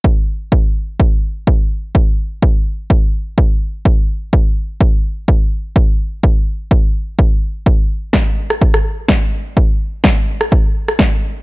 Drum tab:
SD |----------------|----------------|----------------|----------------|
BD |o---o---o---o---|o---o---o---o---|o---o---o---o---|o---o---o---o---|

SD |----o--r-r--o---|----o--r---ro---|
BD |o---o---o---o---|o---o---o---o---|